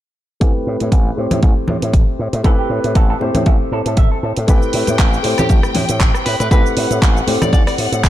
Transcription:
0.40 0.50 A1 medium
0.40 1.14 A3 medium
0.40 1.15 C4 medium
0.40 1.15 E4 medium
0.40 1.15 G4 medium
0.40 1.15 B4 medium
0.40 kick loud
0.40 closed hi-hat soft
0.67 0.76 A2 medium
0.80 0.88 A2 medium
0.80 closed hi-hat medium
0.80 high conga soft
0.92 1.10 A1 medium
0.92 kick loud
0.92 closed hi-hat soft
1.16 1.27 A2 medium
1.16 2.41 A3 medium
1.16 2.42 C4 medium
1.16 2.42 E4 medium
1.16 2.42 G4 medium
1.16 2.42 C5 medium
1.31 1.39 A2 medium
1.31 closed hi-hat medium
1.31 low conga medium
1.43 1.52 A1 medium
1.43 kick loud
1.43 closed hi-hat soft
1.68 1.78 A2 medium
1.68 low conga medium
1.82 1.95 A2 medium
1.82 closed hi-hat medium
1.94 2.03 A1 medium
1.94 kick loud
1.94 closed hi-hat soft
2.19 2.29 A2 medium
2.33 2.41 A2 medium
2.33 closed hi-hat medium
2.44 2.54 A1 medium
2.44 3.18 A3 medium
2.44 3.18 C4 medium
2.44 3.18 E4 medium
2.44 3.18 G4 medium
2.44 2.49 A4 medium
2.44 3.19 B4 medium
2.44 kick loud
2.44 closed hi-hat soft
2.59 2.67 G4 medium
2.70 2.79 A2 medium
2.84 2.92 A2 medium
2.84 closed hi-hat medium
2.95 3.13 A1 medium
2.95 3.06 A4 medium
2.95 kick loud
2.95 closed hi-hat soft
3.10 3.15 A4 medium
3.20 3.30 A2 medium
3.20 4.45 A3 medium
3.20 4.45 C4 medium
3.20 4.46 E4 medium
3.20 4.46 G4 medium
3.20 4.46 C5 medium
3.20 high conga medium
3.35 3.42 A2 medium
3.35 closed hi-hat medium
3.35 low conga medium
3.46 3.56 A1 medium
3.46 3.54 E5 medium
3.46 kick loud
3.46 closed hi-hat soft
3.72 3.81 A2 medium
3.72 3.79 A4 medium
3.86 3.99 A2 medium
3.86 3.90 A4 medium
3.86 closed hi-hat medium
3.97 4.07 A1 medium
3.97 4.08 E5 medium
3.97 kick loud
3.97 closed hi-hat soft
4.12 4.17 A4 loud
4.23 4.32 A2 medium
4.23 4.30 A4 medium
4.37 4.44 A2 medium
4.37 closed hi-hat medium
4.47 4.57 A1 medium
4.47 5.21 A3 medium
4.47 5.22 C4 medium
4.47 5.22 E4 medium
4.47 5.22 G4 medium
4.47 5.22 B4 loud
4.47 6.49 G5 medium
4.47 kick loud
4.47 closed hi-hat medium
4.47 shaker medium
4.63 shaker soft
4.73 4.83 A2 medium
4.73 open hi-hat loud
4.87 4.95 A2 medium
4.87 closed hi-hat medium
4.87 muted conga medium
4.87 high conga medium
4.87 shaker medium
4.99 5.17 A1 medium
4.99 kick loud
4.99 clap loud
4.99 closed hi-hat medium
4.99 shaker medium
5.13 shaker soft
5.23 5.34 A2 medium
5.23 6.48 A3 medium
5.23 6.48 C4 medium
5.23 6.49 E4 medium
5.23 6.49 G4 medium
5.23 6.49 C5 medium
5.23 open hi-hat loud
5.38 5.46 A2 medium
5.38 5.53 G4 medium
5.38 cross-stick medium
5.38 closed hi-hat medium
5.38 low conga medium
5.38 shaker medium
5.49 5.59 A1 medium
5.49 kick loud
5.49 closed hi-hat medium
5.49 shaker medium
5.63 cross-stick medium
5.63 shaker soft
5.75 5.84 A2 medium
5.75 open hi-hat loud
5.75 muted conga medium
5.75 low conga medium
5.89 6.02 A2 medium
5.89 closed hi-hat medium
5.89 shaker medium
6.00 6.10 A1 medium
6.00 kick loud
6.00 clap loud
6.00 closed hi-hat medium
6.00 shaker medium
6.14 cross-stick medium
6.14 shaker soft
6.26 6.35 A2 medium
6.26 6.35 B4 medium
6.26 open hi-hat loud
6.40 6.48 A2 medium
6.40 6.47 B4 medium
6.40 closed hi-hat medium
6.40 muted conga soft
6.40 shaker medium
6.50 6.61 A1 medium
6.50 7.25 A3 medium
6.50 7.25 C4 medium
6.50 7.25 E4 medium
6.50 7.25 G4 medium
6.50 6.68 B4 medium
6.50 7.26 B4 loud
6.50 8.09 F#5 medium
6.50 kick loud
6.50 closed hi-hat soft
6.50 shaker medium
6.66 shaker soft
6.77 6.86 A2 medium
6.77 open hi-hat loud
6.91 6.98 A2 medium
6.91 closed hi-hat medium
6.91 muted conga soft
6.91 shaker medium
7.02 7.20 A1 medium
7.02 kick loud
7.02 clap loud
7.02 closed hi-hat soft
7.02 shaker soft
7.17 shaker soft
7.27 7.37 A2 medium
7.27 8.09 A3 medium
7.27 8.09 C4 medium
7.27 8.09 E4 medium
7.27 8.09 G4 medium
7.27 8.09 C5 medium
7.27 open hi-hat loud
7.27 high conga medium
7.42 7.49 A2 medium
7.42 7.51 D5 medium
7.42 cross-stick medium
7.42 closed hi-hat medium
7.42 low conga loud
7.42 shaker medium
7.53 7.62 A1 medium
7.53 7.62 D5 medium
7.53 kick loud
7.53 closed hi-hat soft
7.53 shaker soft
7.67 7.75 D5 medium
7.67 muted slap bass stroke soft
7.67 cross-stick medium
7.67 open hi-hat medium
7.67 shaker soft
7.78 7.88 A2 medium
7.78 open hi-hat loud
7.92 8.05 A2 medium
7.92 closed hi-hat medium
7.92 shaker medium
8.04 8.09 A1 medium
8.04 kick loud
8.04 clap loud
8.04 closed hi-hat medium
8.04 shaker medium

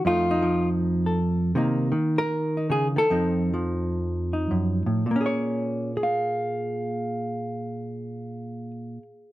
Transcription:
0.05 1.55 F2 medium
0.05 0.41 F3 soft
0.05 1.54 A3 soft
0.05 0.30 D#4 soft
0.05 0.68 F4 medium
0.31 1.18 D#4 medium
0.42 1.53 F3 medium
1.06 1.54 A4 soft
1.55 1.92 C3 medium
1.55 1.91 D#3 soft
1.55 3.10 A#3 soft
1.55 2.56 D#4 soft
1.92 2.95 D#3 medium
2.18 2.71 A#4 loud
2.57 3.10 D#4 soft
2.70 2.96 C#3 medium
2.70 2.87 G#4 medium
2.96 3.10 D#3 medium
2.96 5.06 A4 medium
3.10 4.50 F2 medium
3.10 3.52 F3 soft
3.10 5.03 C4 soft
3.10 4.32 D#4 soft
3.54 5.03 F3 medium
4.33 5.03 D#4 soft
4.51 4.86 F#2 medium
4.86 5.05 A2 medium
5.06 8.97 A#2 medium
5.11 9.02 A#3 soft
5.16 5.97 C#4 soft
5.21 5.97 G#4 soft
5.26 5.96 C#5 medium
5.97 9.32 G#4 medium
6.03 9.32 F5 medium

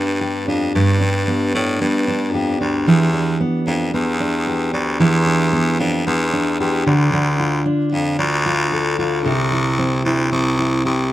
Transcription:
0.00 0.44 G2 loud
0.00 0.74 G2 medium
0.00 1.27 B3 medium
0.00 0.47 D4 medium
0.21 2.34 G4 medium
0.48 0.72 F2 medium
0.48 1.01 D4 medium
0.75 1.51 G2 loud
0.75 2.88 G2 medium
1.01 1.54 D4 medium
1.28 1.81 B3 medium
1.54 1.79 A2 loud
1.54 2.07 D4 medium
1.81 2.35 G2 loud
1.81 3.40 B3 medium
2.08 2.60 D4 medium
2.34 2.58 F2 medium
2.34 4.46 G4 medium
2.61 2.85 D2 medium
2.61 3.13 D4 medium
2.87 3.38 E2 loud
2.87 4.99 E3 medium
3.13 3.67 D4 medium
3.40 3.93 B3 medium
3.67 3.92 F2 medium
3.67 4.20 D4 medium
3.94 4.70 E2 loud
3.94 5.52 B3 medium
4.20 4.73 D4 medium
4.47 6.59 G4 medium
4.73 4.98 D2 medium
4.73 5.26 D4 medium
5.00 5.76 E2 loud
5.00 6.86 E3 medium
5.26 5.80 D4 medium
5.53 6.06 B3 medium
5.80 6.04 F2 loud
5.80 6.33 D4 medium
6.07 6.56 E2 loud
6.07 6.93 B3 medium
6.33 7.39 D4 medium
6.60 6.84 E2 loud
6.60 6.93 G4 medium
6.86 7.62 D2 loud
6.86 7.12 D3 medium
7.13 9.25 D3 medium
7.40 7.91 F4 medium
7.66 8.18 D4 medium
7.92 8.17 F2 medium
7.92 8.45 F4 medium
8.19 8.95 D2 loud
8.19 9.32 D4 medium
8.46 8.98 F4 medium
8.72 9.31 A4 medium
8.98 9.26 D2 medium
8.98 9.32 F4 medium
9.25 10.01 C2 loud
9.25 11.13 C3 medium
9.52 10.05 E4 medium
9.79 10.32 C4 medium
10.05 10.30 D2 loud
10.05 10.59 E4 medium
10.32 10.82 C2 loud
10.32 11.13 C4 medium
10.59 11.12 E4 medium
10.85 11.10 C2 loud
10.85 11.13 G4 medium

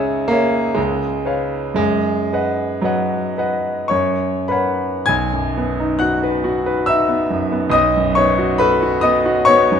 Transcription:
0.00 0.77 C#2 medium
0.00 0.30 C#4 loud
0.00 0.30 G#4 soft
0.00 0.31 C#5 soft
0.00 0.31 E5 medium
0.28 0.76 A#3 medium
0.28 0.73 G#4 soft
0.28 0.73 C#5 soft
0.28 0.73 E5 medium
0.75 1.24 C#2 medium
0.75 1.74 G#3 medium
1.25 1.74 B4 soft
1.25 1.74 C#5 soft
1.25 1.75 F5 soft
1.74 2.28 F#2 medium
1.74 2.83 G#3 medium
2.33 2.81 B4 soft
2.33 2.81 D#5 soft
2.33 2.82 F#5 soft
2.82 3.89 F#3 medium
2.82 3.32 B4 soft
2.82 3.33 D#5 soft
2.82 3.33 F#5 soft
3.38 3.87 B4 soft
3.38 3.87 D#5 soft
3.38 3.88 F#5 soft
3.88 4.49 F#2 medium
3.88 4.46 C#5 medium
3.88 4.49 C#6 medium
4.48 5.04 A#4 soft
4.48 5.03 B4 soft
4.48 5.04 C#5 soft
4.48 5.05 F#5 soft
4.48 5.07 B5 medium
5.06 7.68 B1 medium
5.06 5.96 G#5 medium
5.06 6.00 G#6 medium
5.33 5.70 F#2 soft
5.57 5.93 B3 soft
5.80 6.14 D#4 soft
5.99 6.36 F#4 soft
5.99 6.82 F#5 medium
5.99 6.86 F#6 medium
6.23 6.58 B4 soft
6.44 6.78 F#4 medium
6.66 7.00 B4 medium
6.86 7.22 D#4 medium
6.86 7.69 E5 medium
6.86 7.73 E6 medium
7.08 7.43 B3 soft
7.30 7.64 F#2 soft
7.52 7.73 B3 medium
7.70 9.80 B1 medium
7.70 8.14 D#5 medium
7.70 8.16 D#6 medium
7.97 8.31 F#2 soft
8.15 8.52 B3 medium
8.15 8.57 C#5 medium
8.15 8.59 C#6 medium
8.38 8.73 F#4 medium
8.58 8.94 A4 medium
8.58 8.99 B4 medium
8.58 9.02 B5 medium
8.83 9.16 F#4 medium
9.01 9.38 B3 medium
9.01 9.44 D#5 medium
9.01 9.46 D#6 loud
9.26 9.61 F#4 medium
9.45 9.80 B3 medium
9.45 9.80 C#5 medium
9.45 9.80 C#6 loud
9.72 9.80 F#2 medium

